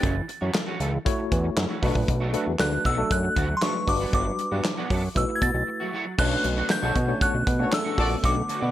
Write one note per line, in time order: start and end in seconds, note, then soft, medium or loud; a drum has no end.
0.00 0.22 F#1 loud
0.00 0.23 E3 medium
0.00 0.16 A3 medium
0.00 0.15 C#4 loud
0.00 1.79 A6 loud
0.00 kick loud
0.00 closed hi-hat medium
0.04 0.14 F#4 medium
0.16 muted clean electric guitar stroke soft
0.28 muted clean electric guitar stroke soft
0.28 closed hi-hat medium
0.41 0.51 F#2 medium
0.41 0.53 E3 medium
0.41 0.54 A3 soft
0.41 0.54 C#4 medium
0.41 0.54 F#4 medium
0.54 snare loud
0.54 clap medium
0.54 closed hi-hat medium
0.67 0.79 E3 medium
0.67 0.79 A3 medium
0.67 0.80 C#4 medium
0.67 0.81 F#4 medium
0.80 0.98 C#2 loud
0.80 0.97 E3 medium
0.80 0.93 A3 medium
0.80 0.93 C#4 medium
0.80 0.93 A4 medium
0.80 closed hi-hat medium
0.93 muted clean electric guitar stroke soft
1.05 1.75 A3 medium
1.05 1.75 E4 medium
1.05 1.75 F#4 medium
1.05 1.76 C#5 medium
1.05 muted clean electric guitar stroke soft
1.05 kick loud
1.05 closed hi-hat medium
1.19 muted clean electric guitar stroke soft
1.32 1.50 E2 medium
1.32 kick loud
1.32 closed hi-hat medium
1.44 muted clean electric guitar stroke soft
1.57 1.66 F#2 loud
1.57 muted clean electric guitar stroke soft
1.57 snare loud
1.57 clap loud
1.57 closed hi-hat medium
1.69 1.82 E3 medium
1.69 1.82 A3 medium
1.69 1.83 C#4 medium
1.69 1.83 F#4 medium
1.82 1.92 B1 medium
1.82 2.03 F#3 medium
1.82 2.23 A3 medium
1.82 1.95 A3 loud
1.82 2.24 D4 medium
1.82 1.95 D4 medium
1.82 2.24 F#4 medium
1.82 1.94 F#4 medium
1.82 2.24 B4 loud
1.82 kick medium
1.82 open hi-hat medium
1.95 2.05 A#1 medium
1.95 muted clean electric guitar stroke soft
1.95 kick medium
2.08 2.36 B1 loud
2.08 muted clean electric guitar stroke soft
2.08 kick loud
2.08 closed hi-hat medium
2.20 2.32 F#3 medium
2.20 2.33 A3 medium
2.20 2.33 D4 medium
2.20 2.34 F#4 medium
2.33 2.50 F#3 medium
2.33 2.51 A3 medium
2.33 2.46 A3 medium
2.33 2.51 D4 medium
2.33 2.45 D4 medium
2.33 2.51 F#4 medium
2.33 2.45 F#4 medium
2.33 2.51 B4 loud
2.33 closed hi-hat medium
2.46 2.56 E2 medium
2.46 muted clean electric guitar stroke soft
2.59 2.78 D2 loud
2.59 2.85 A3 medium
2.59 2.86 D4 medium
2.59 2.86 F#4 medium
2.59 2.86 B4 medium
2.59 2.86 F#6 loud
2.59 snare loud
2.59 clap medium
2.59 closed hi-hat medium
2.72 muted clean electric guitar stroke soft
2.84 3.04 B1 loud
2.84 3.05 F#3 medium
2.84 2.98 A3 medium
2.84 2.97 D4 medium
2.84 2.96 F#4 medium
2.84 3.12 E6 loud
2.84 kick medium
2.84 closed hi-hat medium
2.97 3.41 A3 medium
2.97 3.41 D4 medium
2.97 3.42 F#4 medium
2.97 3.42 A4 loud
2.97 muted clean electric guitar stroke soft
3.10 3.29 F#2 loud
3.10 3.53 F#6 loud
3.10 muted clean electric guitar stroke soft
3.10 kick loud
3.10 closed hi-hat medium
3.23 muted clean electric guitar stroke soft
3.36 3.55 D2 medium
3.36 3.57 F#3 medium
3.36 3.49 A3 medium
3.36 3.48 D4 loud
3.36 3.48 F#4 loud
3.36 kick medium
3.36 closed hi-hat medium
3.49 muted clean electric guitar stroke soft
3.57 3.63 C6 medium
3.61 3.82 F#3 medium
3.61 3.88 A3 medium
3.61 3.75 A3 medium
3.61 3.86 D4 medium
3.61 3.74 D4 medium
3.61 3.86 F#4 medium
3.61 3.74 A4 medium
3.61 3.86 B4 medium
3.61 3.87 C#6 medium
3.61 snare loud
3.61 clap medium
3.61 closed hi-hat medium
3.74 muted clean electric guitar stroke soft
3.87 4.06 G1 medium
3.87 4.69 G3 medium
3.87 4.69 D4 medium
3.87 4.70 F#4 medium
3.87 4.70 B4 medium
3.87 4.00 D6 medium
3.87 muted clean electric guitar stroke soft
3.87 kick medium
3.87 open hi-hat medium
4.00 4.12 F#3 soft
4.00 4.12 B3 medium
4.00 4.13 D4 medium
4.00 4.14 F#4 medium
4.13 4.32 G1 loud
4.13 4.34 F#3 medium
4.13 4.26 B3 medium
4.13 4.25 D4 medium
4.13 4.25 F#4 medium
4.13 5.20 D6 loud
4.13 kick loud
4.13 closed hi-hat medium
4.26 muted clean electric guitar stroke soft
4.39 muted clean electric guitar stroke soft
4.39 closed hi-hat medium
4.51 4.61 G2 medium
4.51 4.63 F#3 soft
4.51 4.64 B3 medium
4.51 4.64 D4 medium
4.51 4.65 F#4 medium
4.65 muted clean electric guitar stroke soft
4.65 snare loud
4.65 clap medium
4.65 closed hi-hat medium
4.77 4.89 F#3 medium
4.77 4.90 B3 medium
4.77 4.90 D4 medium
4.77 4.91 F#4 medium
4.90 5.09 F#2 medium
4.90 5.07 F#3 medium
4.90 5.03 B3 medium
4.90 5.03 D4 medium
4.90 5.03 A4 medium
4.90 kick medium
4.90 open hi-hat medium
5.03 muted clean electric guitar stroke medium
5.15 5.25 B1 loud
5.15 5.85 A3 medium
5.15 5.85 E4 medium
5.15 5.86 F#4 medium
5.15 5.86 B4 medium
5.15 5.90 E6 medium
5.15 muted clean electric guitar stroke soft
5.15 kick loud
5.15 closed hi-hat medium
5.29 muted clean electric guitar stroke soft
5.36 5.42 G#6 medium
5.42 5.51 B2 loud
5.42 6.21 A6 loud
5.42 kick loud
5.42 closed hi-hat medium
5.54 5.64 B1 medium
5.54 muted clean electric guitar stroke soft
5.67 muted clean electric guitar stroke soft
5.80 5.92 F#3 medium
5.80 5.92 A3 medium
5.80 5.93 E4 medium
5.80 5.94 F#4 medium
5.93 6.13 F#3 medium
5.93 6.06 A3 medium
5.93 6.05 E4 medium
5.93 6.05 F#4 loud
6.06 muted clean electric guitar stroke soft
6.18 6.37 B1 loud
6.18 8.71 D3 medium
6.18 6.79 A3 medium
6.18 8.71 A3 medium
6.18 6.42 A3 medium
6.18 8.71 B3 medium
6.18 6.79 C#4 medium
6.18 6.80 D4 medium
6.18 6.43 D4 medium
6.18 8.71 F#4 medium
6.18 6.43 F#4 medium
6.18 6.80 B4 medium
6.18 6.43 C#5 medium
6.18 6.72 F#6 loud
6.18 kick loud
6.18 crash loud
6.44 6.63 B1 loud
6.44 muted clean electric guitar stroke soft
6.44 closed hi-hat medium
6.57 6.69 A3 medium
6.57 6.69 D4 medium
6.57 6.70 F#4 medium
6.57 6.70 C#5 medium
6.70 7.23 G6 loud
6.70 muted clean electric guitar stroke soft
6.70 snare loud
6.70 clap medium
6.70 closed hi-hat medium
6.82 6.92 B1 loud
6.82 6.94 A3 medium
6.82 6.95 D4 medium
6.82 6.94 F#4 medium
6.82 6.95 F#4 medium
6.82 6.94 A4 medium
6.82 6.96 C#5 medium
6.82 6.94 C#5 medium
6.96 7.14 B2 loud
6.96 muted clean electric guitar stroke soft
6.96 kick medium
6.96 closed hi-hat medium
7.08 7.43 A3 medium
7.08 7.43 C#4 medium
7.08 7.43 D4 medium
7.08 7.43 C#5 medium
7.08 muted clean electric guitar stroke medium
7.21 7.32 F#4 medium
7.21 7.32 A4 medium
7.21 7.32 C#5 medium
7.21 7.69 F#6 medium
7.21 muted clean electric guitar stroke soft
7.21 kick loud
7.21 closed hi-hat medium
7.34 7.43 B1 medium
7.34 muted clean electric guitar stroke soft
7.47 7.65 B2 loud
7.47 kick loud
7.47 closed hi-hat medium
7.59 7.68 A3 medium
7.59 7.68 C#4 medium
7.59 7.69 D4 medium
7.59 7.71 F#4 medium
7.59 7.71 A4 medium
7.59 7.69 B4 medium
7.59 7.71 C#5 medium
7.59 muted clean electric guitar stroke soft
7.72 8.42 A3 medium
7.72 8.42 C#4 medium
7.72 8.42 D4 medium
7.72 8.42 A4 medium
7.72 8.26 E6 loud
7.72 muted clean electric guitar stroke soft
7.72 snare loud
7.72 clap medium
7.72 closed hi-hat medium
7.84 7.96 A3 medium
7.84 7.97 D4 medium
7.84 7.97 F#4 medium
7.84 7.99 C#5 loud
7.97 8.16 A#1 medium
7.97 8.14 A3 medium
7.97 8.11 D4 medium
7.97 8.14 F#4 loud
7.97 8.10 F#4 medium
7.97 8.14 A4 loud
7.97 8.14 D5 loud
7.97 8.10 D5 medium
7.97 kick medium
7.97 open hi-hat medium
8.10 muted clean electric guitar stroke soft
8.23 8.42 B1 loud
8.23 8.44 A3 medium
8.23 8.36 D4 medium
8.23 8.35 F#4 medium
8.23 8.34 C#5 medium
8.23 8.71 D6 medium
8.23 kick loud
8.23 closed hi-hat medium
8.35 muted clean electric guitar stroke soft
8.48 8.62 A3 medium
8.48 8.61 D4 medium
8.48 8.60 F#4 medium
8.48 8.61 C#5 medium
8.48 closed hi-hat medium
8.61 8.71 B2 loud
8.61 8.71 A3 soft
8.61 8.71 D4 soft
8.61 8.71 F#4 medium
8.61 8.71 D5 medium